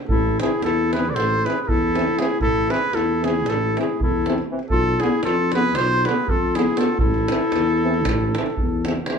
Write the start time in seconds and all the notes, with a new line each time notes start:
0.09 A1 E4 A4, davul low
0.40 E3 C4 E4 G#4, davul high
0.62 E2 E4 A4, davul high
0.91 E3 C4 G#4 B4, davul high
1.05 davul high
1.10 B4 D5
1.14 A1 A4 C5, davul high
1.45 E3 C4 G#4 B4, davul high
1.62 G#4 B4
1.68 E2 E4 A4, davul low
1.95 E3 C4, davul high
2.08 davul high
2.18 E3 C4 E4 G#4, davul high
2.31 davul high
2.40 A1 E4 A4, davul low
2.69 E3 C4 G#4 B4, davul high
2.93 E2 E4 A4, davul high
3.22 E3 C4 E4 G#4, davul high
3.36 davul high
3.46 A1 E4 A4, davul high
3.76 E3 C4 E4, davul high
3.81 G#4
4.00 E2 E4 A4, davul low
4.26 E3 C4, davul high
4.38 davul high
4.50 E3 C4
4.59 davul high
4.70 B1 F4 A4, davul low
5.00 D3 B3 E4 G#4, davul high
5.23 F2 F4 A4, davul high
5.52 D3 B3 B4, davul high
5.56 G#4
5.75 B1 F4 C5, davul high
6.05 D3 B3 B4, davul high
6.09 G#4
6.28 F2 F4 A4, davul low
6.55 D3 B3 E4 G#4, davul high
6.67 davul high
6.77 D3 B3 F4 A4, davul high
6.88 davul high
6.99 A1 E4 A4, davul low
7.14 davul high
7.28 E3 C4, davul high
7.40 davul high
7.52 E2, davul high
7.67 davul high
7.83 E3 C4
7.94 davul high
8.05 A1, davul high, davul low
8.21 davul high
8.35 E3 C4, davul high
8.46 davul high
8.57 E2, davul low
8.85 E3 C4, davul high
8.96 davul high
9.06 E3 C4, davul high